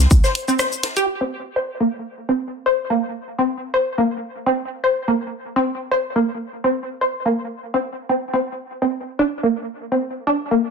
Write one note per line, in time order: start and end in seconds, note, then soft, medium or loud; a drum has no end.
0.11 0.21 C2 medium
0.11 kick loud
0.11 cabasa medium
0.11 shaker medium
0.24 0.27 C5 medium
0.24 snare soft
0.24 cabasa soft
0.35 closed hi-hat medium
0.35 shaker medium
0.48 0.56 C4 medium
0.48 cabasa soft
0.59 0.63 C5 medium
0.59 cross-stick loud
0.59 snare loud
0.59 cabasa medium
0.59 shaker medium
0.72 cabasa soft
0.83 snare loud
0.83 closed hi-hat medium
0.83 shaker medium
0.97 1.04 G4 loud
0.97 closed hi-hat soft
0.97 cabasa soft
1.21 1.26 C4 medium
1.56 1.60 C5 medium
1.80 1.86 A#3 medium
2.29 2.35 C4 medium
2.66 2.69 C5 medium
2.90 2.95 A#3 medium
3.38 3.44 C4 medium
3.74 3.77 C5 medium
3.98 4.04 A#3 medium
4.46 4.52 C4 medium
4.84 4.87 C5 medium
5.08 5.13 A#3 medium
5.56 5.61 C4 medium
5.91 5.95 C5 medium
6.16 6.22 A#3 medium
6.64 6.70 C4 medium
7.01 7.04 C5 medium
7.26 7.31 A#3 medium
7.74 7.79 C4 medium
8.09 8.13 C4 medium
8.33 8.37 C4 medium
8.82 8.88 C4 medium
9.19 9.24 D4 loud
9.43 9.48 A#3 medium
9.92 9.97 C4 medium
10.27 10.33 D4 loud
10.51 10.57 A#3 medium